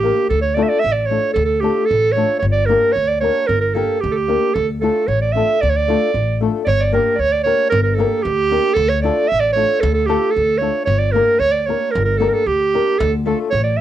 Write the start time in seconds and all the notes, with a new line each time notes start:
Already playing: G4
0.03 A#3 D4 G4 A#4
0.30 D2 A4
0.42 C#5
0.55 A3 D4 F4 A4 D5
0.63 E5
0.69 D5
0.80 E5
0.84 A1
0.92 D5
1.06 A3 C#5
1.11 D4 F4 A4
1.33 D2 A4
1.45 A4
1.60 A3 D4 F4 G4 A4
1.86 A4
1.91 A1
2.12 A3 C#5
2.16 D4 F4 A4
2.39 G1 C#5
2.52 D5
2.66 A#3 D4 A#4
2.70 G4 A#4
2.92 D2 C#5
3.08 D5
3.21 A#3 D4 G4 A#4 C#5
3.47 G1 A#4
3.61 A#4
3.74 A#3 D4 G4 A4 A#4
4.01 D2 G4
4.11 G4 A4
4.28 A#3 D4 G4 A#4
4.54 D2 A4
4.81 A3 D4 F4 A4
5.07 A1 C#5
5.21 D5
5.32 A3 D4 F4 E5
5.37 A4
5.61 D2 D5
5.69 C#5
5.76 D5
5.88 A3 D4 F4 A4
6.14 A1
6.41 A3 D4 F4 A4
6.65 G1 C#5 D5
6.80 D5
6.92 A#3 D4 G4 A#4
7.15 D2 D5
7.20 C#5
7.32 D5
7.44 A#3 D4 G4 A#4 C#5
7.70 G1 A#4
7.83 A#4
7.95 A#3 A4
7.99 D4 G4 A#4
8.22 D2 G4
8.51 A#3 D4 G4 A#4
8.74 D2 A4
8.89 C#5
9.02 A3 D4 F4 A4 D5
9.28 A1 E5
9.40 D5
9.53 A3 D4 C#5
9.57 F4 A4
9.81 D2 A4
9.94 A4
10.06 A3 D4 F4 G4 A4
10.31 A4
10.36 D2
10.58 A3 D4 C#5
10.62 F4 A4
10.85 G1 C#5
10.99 D5
11.12 A#3 D4 G4 A#4
11.39 D2 C#5
11.52 D5
11.66 A#3 D4 G4 A#4 C#5
11.91 A#4
11.95 G1
12.05 A#4
12.18 A#3 D4 G4 A4 A#4
12.29 A#4
12.34 A4
12.46 D2 G4
12.74 A#3 D4 G4 A#4
12.99 D2 A4
13.25 A3 D4 F4 A4
13.51 A1 C#5
13.64 D5
13.77 E5